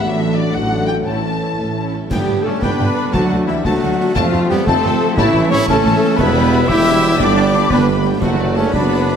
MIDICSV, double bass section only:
0, 0, Header, 1, 2, 480
1, 0, Start_track
1, 0, Tempo, 345423
1, 46, Time_signature, 6, 3, 24, 8
1, 3887, Tempo, 339943
1, 12874, End_track
2, 0, Start_track
2, 0, Title_t, "Double bass section"
2, 0, Program_c, 0, 48
2, 50, Note_on_c, 0, 33, 85
2, 675, Note_off_c, 0, 33, 0
2, 757, Note_on_c, 0, 33, 77
2, 1393, Note_off_c, 0, 33, 0
2, 1483, Note_on_c, 0, 33, 61
2, 2123, Note_off_c, 0, 33, 0
2, 2213, Note_on_c, 0, 33, 54
2, 2853, Note_off_c, 0, 33, 0
2, 2940, Note_on_c, 0, 43, 83
2, 3034, Note_off_c, 0, 43, 0
2, 3170, Note_on_c, 0, 43, 60
2, 3266, Note_off_c, 0, 43, 0
2, 3406, Note_on_c, 0, 43, 59
2, 3502, Note_off_c, 0, 43, 0
2, 3642, Note_on_c, 0, 43, 92
2, 3738, Note_off_c, 0, 43, 0
2, 3882, Note_on_c, 0, 43, 68
2, 3979, Note_off_c, 0, 43, 0
2, 4364, Note_on_c, 0, 38, 86
2, 4461, Note_off_c, 0, 38, 0
2, 4614, Note_on_c, 0, 38, 65
2, 4709, Note_off_c, 0, 38, 0
2, 4844, Note_on_c, 0, 38, 60
2, 4941, Note_off_c, 0, 38, 0
2, 5087, Note_on_c, 0, 38, 100
2, 5184, Note_off_c, 0, 38, 0
2, 5333, Note_on_c, 0, 38, 71
2, 5429, Note_off_c, 0, 38, 0
2, 5809, Note_on_c, 0, 41, 99
2, 5905, Note_off_c, 0, 41, 0
2, 6050, Note_on_c, 0, 41, 74
2, 6146, Note_off_c, 0, 41, 0
2, 6298, Note_on_c, 0, 41, 67
2, 6392, Note_off_c, 0, 41, 0
2, 6538, Note_on_c, 0, 41, 109
2, 6632, Note_off_c, 0, 41, 0
2, 6774, Note_on_c, 0, 41, 87
2, 6869, Note_off_c, 0, 41, 0
2, 7249, Note_on_c, 0, 33, 109
2, 7345, Note_off_c, 0, 33, 0
2, 7492, Note_on_c, 0, 33, 78
2, 7586, Note_off_c, 0, 33, 0
2, 7725, Note_on_c, 0, 33, 80
2, 7820, Note_off_c, 0, 33, 0
2, 7965, Note_on_c, 0, 33, 119
2, 8060, Note_off_c, 0, 33, 0
2, 8202, Note_on_c, 0, 33, 85
2, 8297, Note_off_c, 0, 33, 0
2, 8680, Note_on_c, 0, 28, 107
2, 9309, Note_off_c, 0, 28, 0
2, 9397, Note_on_c, 0, 28, 110
2, 10029, Note_off_c, 0, 28, 0
2, 10109, Note_on_c, 0, 31, 111
2, 10745, Note_off_c, 0, 31, 0
2, 10827, Note_on_c, 0, 31, 109
2, 11466, Note_off_c, 0, 31, 0
2, 11547, Note_on_c, 0, 30, 94
2, 12188, Note_off_c, 0, 30, 0
2, 12264, Note_on_c, 0, 30, 87
2, 12874, Note_off_c, 0, 30, 0
2, 12874, End_track
0, 0, End_of_file